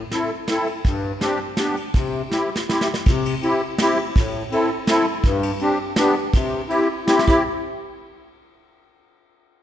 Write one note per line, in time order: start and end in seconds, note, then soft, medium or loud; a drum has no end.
0.11 0.30 C4 medium
0.11 0.30 E4 medium
0.11 0.30 A4 medium
0.11 snare soft
0.11 ride soft
0.48 0.67 C4 medium
0.48 0.67 E4 medium
0.48 0.68 A4 medium
0.48 snare medium
0.48 ride soft
0.67 ride soft
0.84 1.12 G2 medium
0.84 kick medium
0.84 ride soft
1.21 1.39 C4 medium
1.21 1.39 D4 medium
1.21 1.39 G4 medium
1.21 snare medium
1.21 ride soft
1.57 1.76 B3 medium
1.57 1.76 D4 medium
1.57 1.76 G4 medium
1.57 snare medium
1.57 ride soft
1.77 ride soft
1.94 2.22 C3 medium
1.94 kick medium
1.94 ride soft
2.31 2.49 C4 medium
2.31 2.49 E4 medium
2.31 2.50 G4 medium
2.31 snare soft
2.56 snare soft
2.69 2.88 C4 medium
2.69 2.88 E4 medium
2.69 2.88 G4 medium
2.69 snare soft
2.81 snare soft
2.94 snare soft
3.06 3.35 C3 medium
3.06 kick medium
3.06 ride soft
3.26 ride soft
3.43 3.61 C4 medium
3.43 3.61 E4 medium
3.43 3.62 G4 medium
3.43 ride soft
3.78 3.98 C4 medium
3.78 3.98 E4 medium
3.78 3.98 G4 medium
3.78 snare medium
3.78 ride medium
4.16 4.43 A2 medium
4.16 kick medium
4.16 ride soft
4.52 4.70 C4 medium
4.52 4.70 E4 medium
4.52 4.70 A4 medium
4.52 ride soft
4.87 5.06 C4 medium
4.87 5.06 E4 medium
4.87 5.06 A4 medium
4.87 snare medium
4.87 ride soft
5.23 5.51 G2 medium
5.23 kick medium
5.23 ride soft
5.43 ride soft
5.59 5.79 C4 medium
5.59 5.79 D4 medium
5.59 5.79 G4 medium
5.59 ride soft
5.96 6.15 B3 medium
5.96 6.15 D4 medium
5.96 6.15 G4 medium
5.96 snare medium
5.96 ride soft
6.33 6.62 C3 medium
6.33 kick medium
6.33 ride soft
6.69 6.88 C4 medium
6.69 6.88 E4 medium
6.69 6.88 G4 medium
6.69 ride soft
7.07 7.25 C4 medium
7.07 7.25 E4 medium
7.07 7.26 G4 medium
7.07 snare medium
7.19 snare soft
7.27 7.43 C4 medium
7.27 7.43 E4 medium
7.27 7.43 G4 medium
7.27 kick medium
7.27 crash soft